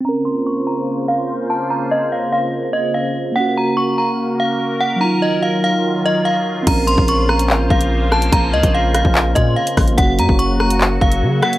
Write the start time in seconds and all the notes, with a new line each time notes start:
0.01 C4
0.05 C#3 A#3 C#4 F4 C5 A#5
0.09 A#4
0.25 C6
0.47 C#6
0.67 A#5
1.08 F5
1.50 A5
1.70 A#5
1.91 D#5
2.12 F5
2.33 F5
2.73 D#5
2.94 F5
3.32 A#3 F#4 A#4 F#5
3.36 C#4
3.40 F#4
3.57 A#5
3.77 C#6
3.98 A#5
4.40 F5
4.81 F#5
4.96 F#3
5.00 D#3 F#3 D#4 F4 A#5
5.04 F4
5.22 D#5
5.43 F5
5.64 F5
6.06 D#5
6.25 F5
6.63 C4
6.67 A#1 C#3 A#3 C#4 F4 C5 A#5, kick, closed hi-hat, crash
6.71 A#4
6.87 C6, closed hi-hat
6.98 A#1, kick
7.08 C#6, closed hi-hat
7.29 A#5, cross-stick
7.39 closed hi-hat
7.50 A1, clap
7.60 A#1
7.70 A#1 F5, kick
7.81 closed hi-hat
8.12 A5, cross-stick
8.22 closed hi-hat
8.32 A#1 A#5, kick, closed hi-hat
8.53 C#2 D#5
8.63 A#1, kick, closed hi-hat
8.74 F5
8.95 F5, cross-stick, closed hi-hat
9.05 A#1, kick
9.15 clap
9.35 A#2 D#5, kick, closed hi-hat
9.56 F5
9.67 closed hi-hat
9.77 A1, kick, cross-stick, open hi-hat
9.88 closed hi-hat
9.94 F#1 A#3 F#4 F#5, kick
9.98 F#3 C#4, closed hi-hat
10.02 F#4
10.19 F#2 A#5, closed hi-hat
10.29 F#1, kick
10.39 C#6, closed hi-hat
10.60 A#5, cross-stick
10.70 closed hi-hat
10.81 clap
11.01 F#1 F5, kick
11.12 closed hi-hat
11.22 C#3
11.42 F#5, cross-stick
11.53 closed hi-hat